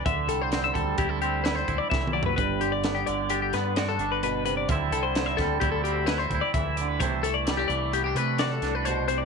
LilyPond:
<<
  \new Staff \with { instrumentName = "Clean electric guitar" } { \time 5/4 \key c \lydian \tempo 4 = 130 e''8 a'16 c''8 e''16 a'8 g'16 a'16 g'8 b'16 c''8 d''16 e''8 d''16 b'16 | b'8 g'16 d''8 g'16 d''8 g'16 g'16 b'8 d''16 a'8 b'16 b'8 b'16 d''16 | e''8 a'16 c''8 e''16 a'8 g'16 a'16 g'8 b'16 c''8 d''16 e''8 d''16 b'16 | c''8 a'16 d''8 g'16 d''8 g'16 g'16 b'8 d''16 a'8 b'16 c''8 c''16 d''16 | }
  \new Staff \with { instrumentName = "Clean electric guitar" } { \time 5/4 \key c \lydian << { r4 c'4 e'8 c'8 e'8 e'4. | r4 b4 d'8 b8 fis'8 d'4. | <g c' e'>4 c'4 e'8 c'8 e'8 e'4. | <e a d' e'>4 g16 a8. b16 d'16 a8 fis'8 d'4. | } \\ { d8 g4 g2~ g8 e8 fis8 | g,8 d4 d2~ d8 b,8 c8 | d8 g4 g2~ g8 e8 d8 | c8 e4 e2~ e8 b,8 c8 | } >> }
  \new Staff \with { instrumentName = "Fingered electric bass" } { \clef bass \time 5/4 \key c \lydian d,8 c,4 d,8 d,4. d,16 r16 c,4 | g,,4. g,,4 g,4 g,,4. | d,8 c,4 d,8 d,4. d,16 r16 d,4 | c,4. c,4 c4 c,4. | }
  \new DrumStaff \with { instrumentName = "Drums" } \drummode { \time 5/4 <hh bd>8 hh8 <hh sn>8 <hh bd>8 <hh bd>8 hh8 <hh sn>8 <hh bd>8 \tuplet 3/2 { <bd sn>8 toml8 tomfh8 } | <hh bd>8 hh8 <hh sn>8 hh8 hh8 <hh sn>8 <hh sn>8 hh8 hh8 hh8 | <hh bd>8 hh8 <hh sn>8 <hh bd sn>8 <hh bd>8 hh8 <hh sn>8 <hh bd>8 <hh bd>8 hh8 | <hh bd>8 hh8 <hh sn>8 hh8 hh8 hh8 <hh sn>8 <hh sn>8 hh8 hh8 | }
>>